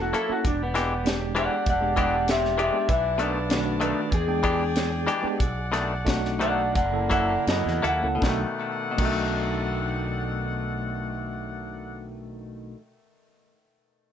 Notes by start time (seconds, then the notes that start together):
Already playing: E1 A#3 C#4 E4 A4 E5 A5
0.01 F#4
0.13 F#3 A#3 E4 A4, closed hi-hat
0.28 A#3 C#4 E4 F#4 A4, muted fretless electric bass stroke
0.44 E1 D4 G4 D5, kick, closed hi-hat
0.63 B3
0.74 E3 G#3 B3 D4 G4, snare, closed hi-hat
1.04 G#3 B3 D4 G4, snare, closed hi-hat
1.35 E3 G#3 D4 G4 D5 F#5, closed hi-hat
1.66 E1 D5 F#5, kick, closed hi-hat
1.81 G#3 B3 D4 G4
1.97 E3 G#3 D4 G4 D5, kick, closed hi-hat
2.01 F#5
2.28 G4 E5, snare, closed hi-hat
2.45 snare
2.58 E3 G#3 D4 G4 E5, closed hi-hat
2.72 G#3 B3 D4 G4
2.88 B1 B4 E5 F#5 A5, kick, closed hi-hat
3.18 B2 D#3 A3 D4 B4, closed hi-hat
3.49 D#3 A3 D4 F#4 B4, snare, closed hi-hat
3.80 B2 D#3 A3 D4 B4, closed hi-hat
4.11 E2 G#4 G5, kick, closed hi-hat
4.27 G#3 B3 D4 G5
4.43 E3 G#3 D4 G4, kick, closed hi-hat
4.76 snare, closed hi-hat
5.07 E3 G#3 D4 G4, closed hi-hat
5.22 G#3 B3 D4 G4, muted fretless electric bass stroke
5.39 B1 F#5, kick, closed hi-hat
5.72 B2 D#3 A3 D4, snare, closed hi-hat
6.05 A3 D4 D#4 F#4, kick, snare, closed hi-hat
6.25 snare
6.39 B2 D#3 A3 D4 D5 F#5, closed hi-hat
6.74 F#1 A#3 E4 D5 F#5, kick, closed hi-hat
6.92 C#3 A#3 E4 A4
7.10 F#3 A#3 E4 A4 D5 F#5, kick, closed hi-hat
7.47 F#2 F#4 D#5, snare, closed hi-hat
7.66 E2, snare
7.82 D#2 F#3 A#3 E4 A4, closed hi-hat
7.87 F#5
8.02 C#2 A#3 C#4 E4 A4
8.15 B2 A3
8.20 B1 D#3 D4 D#4 A4 D5 F#5, kick, snare
8.25 F#4
8.29 A3
8.91 B2 A3
8.97 B1 D#3 D4 D#4, kick, crash
9.01 A3 F#4